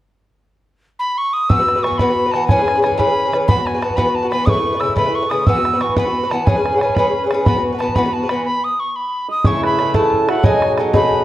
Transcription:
0.99 B5
1.18 C#6
1.33 D#6
1.49 E3 B3 F#4 B4 E6, bodhran
1.59 B3 F#4 B4
1.68 bodhran
1.75 B3 F#4 B4
1.83 E3 B3 F#4 C#6, bodhran
1.88 B4
1.92 bodhran
1.98 E3 B3 F#4 B4 B5, bodhran
2.09 B3 F#4 B4
2.26 B3 F#4 B4
2.32 E3 A5, bodhran
2.36 B3 F#4 B4
2.47 E3 C#4 G#4 G#5, bodhran
2.52 B4
2.59 C#4 G#4 B4
2.68 bodhran
2.75 G#4 B4
2.79 E3 C#4 G#5
2.84 C#4 G#4 B4, bodhran
2.92 bodhran
2.98 E3 C#4 G#4 B4 B5, bodhran
3.07 C#4 G#4 B4
3.25 C#4 G#4 B4
3.32 E3 C#4 G#4 B4, bodhran
3.48 E3 B3 F#4 B4 B5, bodhran
3.56 B3 F#4 B4
3.66 G#5, bodhran
3.74 B3 F#4 B4
3.82 E3 B3 F#4 B4 A5, bodhran
3.90 bodhran
3.96 E3 B3 F#4 B4 B5, bodhran
4.06 B3 F#4 B4
4.15 A5
4.23 B3 F#4 B4
4.30 E3 B3 F#4 B5, bodhran
4.34 B4
4.46 C#3 A3 E4 B4 C#6 D#6, bodhran
4.57 A3 E4 B4
4.73 A3 B4
4.80 C#3 A3 E4 B4 E6, bodhran
4.89 bodhran
4.96 C#3 A3 E4 B4 B5, bodhran
5.06 A3 E4 B4
5.15 C#6
5.22 A3 E4 B4
5.30 C#3 A3 E4 B4 D#6, bodhran
5.47 E3 B3 F#4 B4 E6, bodhran
5.56 B3 F#4 B4
5.65 bodhran
5.73 B3 F#4 B4
5.81 E3 B3 F#4 B4 C#6, bodhran
5.89 bodhran
5.97 E3 B3 F#4 B4 B5, bodhran
6.05 B3 F#4 B4
6.23 B3 F#4 B4
6.31 E3 B3 F#4 A5, bodhran
6.35 B4
6.46 E3 C#4 G#4 B4 G#5, bodhran
6.56 C#4 G#4 B4
6.66 bodhran
6.72 C#4 G#4 B4
6.77 E3 F#5 G#5
6.81 C#4 G#4 B4, bodhran
6.90 bodhran
6.95 E3 C#4 B5, bodhran
6.99 G#4 B4
7.07 G#4 B4
7.11 C#4
7.24 C#4 G#4 B4
7.31 E3 C#4 G#4 B4, bodhran
7.45 E3 B3 F#4 B4 B5, bodhran
7.56 B3 F#4 B4
7.73 B3 F#4 B4
7.78 E3 B3 A5, bodhran
7.83 F#4 B4
7.89 bodhran
7.95 E3 B3 F#4 B4 B5, bodhran
8.06 B3 F#4 B4
8.13 A5
8.23 B3 F#4 B4
8.29 E3 B3 F#4 B5, bodhran
8.34 B4
8.45 B5
8.64 D#6
8.80 C#6
8.96 B5
9.28 D#5 D#6
9.44 C#3 A3 E4 A4 C#5 C#6, bodhran
9.63 B4 B5, bodhran
9.79 C#3 A3 E4 A4, bodhran
9.94 C#3 A3 E4 A4 A5, bodhran
10.13 bodhran
10.28 A3 E4 F#4 A4 F#5, bodhran
10.43 B2 F#3 D#4 G#4 G#5, bodhran
10.62 bodhran
10.78 B2 F#3 D#4 G#4 A4, bodhran
10.93 B2 F#3 D#4 G#4 B4 B5, bodhran
11.13 bodhran

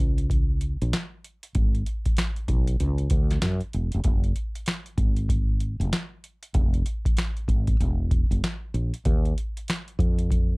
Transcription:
0.00 C#2
0.18 closed hi-hat
0.30 kick, closed hi-hat
0.61 closed hi-hat
0.82 A#1, closed hi-hat
0.93 snare, closed hi-hat
1.24 closed hi-hat
1.43 closed hi-hat
1.55 G#1, kick, closed hi-hat
1.75 closed hi-hat
1.86 closed hi-hat
2.06 kick, closed hi-hat
2.17 snare, closed hi-hat
2.36 closed hi-hat
2.48 B1, kick, closed hi-hat
2.67 closed hi-hat
2.80 C#2, closed hi-hat
2.98 closed hi-hat
3.10 D2, kick, closed hi-hat
3.31 snare, closed hi-hat
3.42 F#2, snare, closed hi-hat
3.61 closed hi-hat
3.73 E1, closed hi-hat
3.92 F1, closed hi-hat
4.04 F#1, kick, closed hi-hat
4.24 closed hi-hat
4.36 closed hi-hat
4.55 closed hi-hat
4.66 snare, closed hi-hat
4.86 closed hi-hat
4.98 G#1, kick, closed hi-hat
5.17 closed hi-hat
5.29 kick, closed hi-hat
5.60 closed hi-hat
5.80 F1, closed hi-hat
5.93 snare, closed hi-hat
6.24 closed hi-hat
6.43 closed hi-hat
6.54 F1, kick, closed hi-hat
6.74 closed hi-hat
6.86 closed hi-hat
7.05 kick, closed hi-hat
7.17 snare, closed hi-hat
7.37 closed hi-hat
7.48 G#1, kick, closed hi-hat
7.67 kick, closed hi-hat
7.80 E1, closed hi-hat
8.11 kick, closed hi-hat
8.31 F#1, closed hi-hat
8.44 snare, closed hi-hat
8.74 A#1, closed hi-hat
8.94 closed hi-hat
9.05 D#2, kick, closed hi-hat
9.25 closed hi-hat
9.38 closed hi-hat
9.57 closed hi-hat
9.68 snare, closed hi-hat
9.88 closed hi-hat
9.99 F2, kick, closed hi-hat
10.19 closed hi-hat
10.31 kick, closed hi-hat

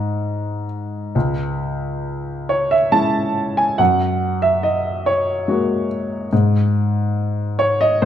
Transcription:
Already playing: G#2 D#5
1.15 C#2
2.49 C#5
2.71 E5
2.92 G#3 C#4 E4 A5
3.57 G#5
3.78 F#2 F#5
4.42 E5
4.63 D#5
5.06 C#5
5.48 G#3 A#3 F#4
6.33 G#2
7.59 C#5
7.81 D#5
8.02 C5

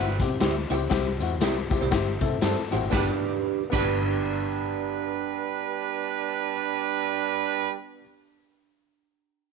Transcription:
Already playing: G1 G3 E4 B4
0.20 C3 C4 E4 G4, kick, closed hi-hat, tambourine
0.40 D2 C4 E4 G4 C5, snare, closed hi-hat, tambourine
0.70 C#2 C4 E4 G4 C5, closed hi-hat, tambourine
0.90 C2 C4 E4 G4, kick, snare, closed hi-hat, tambourine
1.20 E2 C4 E4 F#4, closed hi-hat, tambourine
1.41 C2 C4 E4 G4 C5, snare, closed hi-hat, tambourine
1.70 C4 E4 G4, kick, closed hi-hat, tambourine
1.81 C2 E4 G4 C5
1.91 G1 C4 E4 G4, kick, snare, closed hi-hat, tambourine
2.21 C3 C4 E4 A4 E5, kick, closed hi-hat, tambourine
2.41 G2 C4 E4 G4 A4 C5 A5, snare, closed hi-hat, tambourine
2.58 snare
2.71 A1 C4 E4 F#4 G4 C5 G5, closed hi-hat, tambourine
2.82 G#1
2.90 G1 G3 B3 D4 G4 B4, kick, snare, tambourine
2.96 G4 B4
3.70 G1 G3 B3 D4 B4, kick, crash, tambourine
3.75 G4 B4

